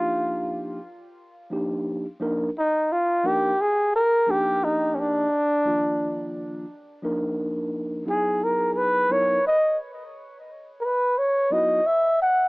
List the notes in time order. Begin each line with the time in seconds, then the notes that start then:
Already playing: F3 A#3 D4 D#4 F4 G4
1.50 F3 A#3 D4 D#4 G4
2.20 F3 A#3 D4 D#4 A#4
2.58 D#4
2.92 F4
3.23 F3 A#3 D4 D#4 G4 A#4
3.61 G#4
3.96 A#4
4.26 F3 A#3 D4 D#4 G4
4.31 G4
4.64 D#4
4.95 C#4
5.00 D4
5.65 D#3 F3 A#3 D4 F4
7.03 F3 A#3 D4 D#4 A#4
8.06 F#3 B3 D#4 E4 G#4
8.10 G#4
8.44 A#4
8.73 A#4
8.77 B4
9.09 F#3 B3 D#4 E4 A#4 C#5
9.47 D#5
10.80 A#4
10.85 B4
11.18 C#5
11.51 F#3 B3 D#4 E4 F#4 D#5
11.86 E5
12.22 F#5